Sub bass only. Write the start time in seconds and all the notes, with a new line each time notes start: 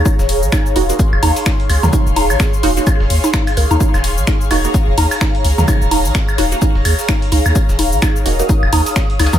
0.19 D#1
0.43 A#1
0.76 D#1
1.13 D#1
1.23 D#2
1.70 C#2
1.83 D#2
2.07 D#1
2.30 A#1
2.63 D#1
3.00 D#1
3.10 D#2
3.57 C#2
3.71 D#2
3.94 D#1
4.18 A#1
4.51 D#1
4.88 D#1
4.98 D#2
5.45 C#2
5.58 D#2
5.82 D#1
6.05 A#1
6.38 D#1
6.75 D#1
6.85 D#2
7.32 C#2
7.46 D#2
7.69 D#1
7.93 A#1
8.26 D#1
8.63 D#1
8.73 D#2
9.20 C#2
9.33 D#2